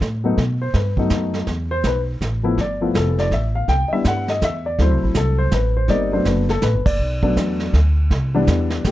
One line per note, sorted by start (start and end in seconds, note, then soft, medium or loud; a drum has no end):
0.01 0.36 A2 medium
0.01 kick soft
0.01 snare soft
0.01 hi-hat pedal soft
0.24 0.36 F#3 medium
0.24 0.36 A3 medium
0.24 0.36 B3 medium
0.24 0.37 D#4 medium
0.38 0.73 B2 medium
0.38 brush sweep soft
0.38 kick soft
0.38 snare soft
0.62 0.74 C5 medium
0.74 1.10 G2 medium
0.74 0.97 B4 medium
0.74 kick soft
0.74 snare soft
0.97 1.45 F#3 medium
0.97 1.46 A3 soft
0.97 1.46 B3 soft
0.97 1.46 D#4 medium
0.97 kick soft
1.10 1.46 F#2 medium
1.10 kick soft
1.10 snare soft
1.10 hi-hat pedal medium
1.34 snare soft
1.47 1.83 E2 medium
1.47 brush sweep soft
1.47 kick soft
1.47 snare soft
1.71 1.84 C5 medium
1.84 2.20 B1 medium
1.84 2.00 B4 medium
1.84 kick soft
1.84 snare medium
1.84 hi-hat pedal medium
2.21 2.57 A1 medium
2.21 kick soft
2.21 snare soft
2.21 hi-hat pedal medium
2.43 2.56 F3 medium
2.43 2.57 A3 medium
2.43 2.56 B3 medium
2.43 2.57 E4 medium
2.58 2.94 G1 medium
2.58 2.82 D5 medium
2.58 brush sweep soft
2.58 kick soft
2.58 snare soft
2.81 3.29 F3 medium
2.81 3.29 A3 soft
2.81 3.29 B3 medium
2.81 3.29 E4 medium
2.81 2.95 F4 medium
2.94 3.30 F1 medium
2.94 3.18 A4 medium
2.94 kick soft
2.94 snare medium
2.94 hi-hat pedal medium
3.19 3.32 D5 medium
3.19 snare soft
3.31 3.67 A1 medium
3.31 3.55 E5 medium
3.31 kick soft
3.31 snare soft
3.55 3.68 F5 medium
3.68 3.90 C2 medium
3.68 3.91 G5 medium
3.68 brush sweep soft
3.68 kick soft
3.68 snare soft
3.88 3.90 D#5 medium
3.88 muted upright bass stroke soft
3.93 4.40 G3 medium
3.93 4.40 B3 soft
3.93 4.40 D4 soft
3.93 4.40 E4 medium
3.93 4.05 E5 medium
4.04 4.41 G2 medium
4.04 4.29 F#5 medium
4.04 kick soft
4.04 snare soft
4.04 hi-hat pedal medium
4.28 4.42 D#5 medium
4.28 snare soft
4.42 4.78 E2 medium
4.42 4.66 E5 medium
4.42 kick soft
4.42 snare medium
4.42 hi-hat pedal soft
4.66 4.79 D5 medium
4.79 4.91 D2 medium
4.79 5.82 F#3 medium
4.79 5.82 A3 soft
4.79 5.82 C4 soft
4.79 5.02 E4 medium
4.79 5.03 C5 medium
4.79 brush sweep soft
4.79 kick soft
4.79 snare soft
4.91 5.03 C2 medium
5.03 5.15 A1 medium
5.03 5.16 E4 medium
5.14 5.51 C2 medium
5.14 5.39 A4 medium
5.14 kick soft
5.14 snare medium
5.14 hi-hat pedal medium
5.38 5.52 C5 medium
5.51 5.88 A1 medium
5.51 5.76 B4 medium
5.51 kick soft
5.51 snare soft
5.51 hi-hat pedal medium
5.77 5.90 C5 medium
5.88 6.25 G1 medium
5.88 6.10 G3 medium
5.88 6.10 A#3 medium
5.88 6.11 C4 medium
5.88 6.11 D#4 medium
5.88 6.12 D5 medium
5.88 brush sweep soft
5.88 kick soft
5.88 snare soft
6.12 6.45 F#3 medium
6.12 6.45 A3 medium
6.12 6.45 B3 medium
6.12 6.45 D4 medium
6.12 6.26 C5 medium
6.25 6.62 F#1 medium
6.25 6.49 B4 medium
6.25 kick soft
6.25 snare medium
6.25 hi-hat pedal soft
6.49 6.63 A4 medium
6.49 snare soft
6.62 6.75 A1 medium
6.62 6.85 B4 medium
6.62 kick soft
6.62 snare soft
6.62 hi-hat pedal medium
6.75 6.86 G1 soft
6.86 6.98 F#1 medium
6.86 7.70 D5 medium
6.86 kick medium
6.86 ride medium
6.99 7.35 B1 medium
6.99 brush sweep soft
7.23 7.71 F#3 medium
7.23 7.71 A3 medium
7.23 7.71 B3 medium
7.23 7.71 D4 medium
7.23 kick medium
7.37 7.73 E2 medium
7.37 kick soft
7.37 snare medium
7.37 hi-hat pedal medium
7.60 snare soft
7.73 8.09 D2 medium
7.73 kick soft
7.73 snare soft
8.10 8.46 C2 medium
8.10 brush sweep soft
8.10 kick soft
8.10 snare soft
8.35 8.82 E3 medium
8.35 8.82 G3 medium
8.35 8.82 B3 medium
8.35 8.82 D4 medium
8.47 8.83 E2 medium
8.47 kick soft
8.47 snare medium
8.47 hi-hat pedal medium
8.70 snare soft
8.84 8.91 D2 medium
8.84 8.91 G4 medium
8.84 kick soft
8.84 snare medium
8.84 hi-hat pedal medium